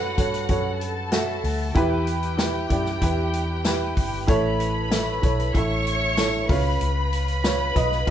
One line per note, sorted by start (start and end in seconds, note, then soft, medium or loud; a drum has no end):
0.00 0.14 F#2 medium
0.00 0.17 F#4 loud
0.00 0.78 F#4 medium
0.00 0.18 A4 loud
0.00 1.77 B4 medium
0.00 0.19 C#5 loud
0.00 0.78 F#5 medium
0.17 0.47 G2 medium
0.17 0.40 F#4 medium
0.17 0.40 A4 medium
0.17 0.41 C#5 medium
0.17 kick medium
0.17 closed hi-hat medium
0.33 snare soft
0.33 closed hi-hat medium
0.49 1.40 F#2 medium
0.49 0.93 F#4 medium
0.49 0.94 A4 medium
0.49 0.94 C#5 medium
0.49 kick medium
0.49 closed hi-hat medium
0.81 1.74 A4 medium
0.81 1.74 A5 medium
0.81 closed hi-hat medium
1.12 1.56 F#4 medium
1.12 1.57 A4 medium
1.12 1.57 E5 medium
1.12 snare loud
1.12 closed hi-hat medium
1.12 tambourine loud
1.44 1.73 D2 medium
1.44 open hi-hat medium
1.75 2.66 E2 medium
1.75 2.67 E3 medium
1.75 2.20 E4 loud
1.75 2.20 G4 loud
1.75 4.25 G4 medium
1.75 2.21 B4 loud
1.75 4.24 G5 medium
1.75 kick loud
1.75 closed hi-hat medium
2.07 closed hi-hat medium
2.23 closed hi-hat soft
2.37 2.60 E4 medium
2.37 2.61 G4 medium
2.37 2.61 B4 medium
2.37 snare loud
2.37 closed hi-hat medium
2.37 tambourine medium
2.69 3.00 F#2 medium
2.69 2.92 E4 medium
2.69 2.93 G4 medium
2.69 2.93 D5 medium
2.69 kick medium
2.69 closed hi-hat medium
2.86 snare soft
3.02 3.93 E2 loud
3.02 3.46 E4 medium
3.02 3.47 G4 medium
3.02 3.47 B4 medium
3.02 kick medium
3.02 closed hi-hat medium
3.33 closed hi-hat medium
3.64 4.09 E4 medium
3.64 4.10 G4 medium
3.64 4.10 B4 medium
3.64 snare loud
3.64 closed hi-hat medium
3.64 tambourine medium
3.97 4.26 G1 medium
3.97 kick medium
3.97 open hi-hat medium
4.27 5.19 A1 loud
4.27 5.19 A2 medium
4.27 4.72 E4 loud
4.27 4.73 A4 loud
4.27 5.52 B4 medium
4.27 4.73 C#5 loud
4.27 5.52 B5 medium
4.27 kick loud
4.27 closed hi-hat medium
4.60 closed hi-hat medium
4.90 5.13 E4 medium
4.90 5.13 A4 medium
4.90 5.14 E5 medium
4.90 snare loud
4.90 closed hi-hat medium
4.90 tambourine medium
5.22 5.53 B1 medium
5.22 5.45 E4 medium
5.22 5.45 A4 medium
5.22 5.46 C#5 medium
5.22 kick medium
5.22 closed hi-hat medium
5.40 closed hi-hat medium
5.54 6.46 A1 medium
5.54 5.99 E4 medium
5.54 5.99 A4 medium
5.54 6.48 C#5 medium
5.54 6.00 E5 medium
5.54 6.48 C#6 medium
5.54 kick medium
5.54 closed hi-hat medium
5.87 closed hi-hat medium
6.17 6.49 E4 medium
6.17 6.50 A4 medium
6.17 6.50 C#5 medium
6.17 snare loud
6.17 closed hi-hat medium
6.17 tambourine medium
6.49 6.79 C#2 loud
6.49 7.41 C#3 medium
6.49 7.25 F4 medium
6.49 8.10 B4 medium
6.49 7.26 B4 medium
6.49 7.26 C#5 medium
6.49 8.10 B5 medium
6.49 kick loud
6.49 open hi-hat medium
6.81 7.72 C#2 loud
6.81 closed hi-hat loud
7.13 closed hi-hat medium
7.28 closed hi-hat soft
7.44 7.66 F4 medium
7.44 7.67 B4 medium
7.44 7.67 C#5 medium
7.44 snare loud
7.44 closed hi-hat medium
7.44 tambourine medium
7.75 8.05 B1 medium
7.75 7.98 F4 medium
7.75 7.98 B4 medium
7.75 7.98 D#5 medium
7.75 kick loud
7.75 closed hi-hat medium
7.92 snare soft
8.07 8.10 F4 medium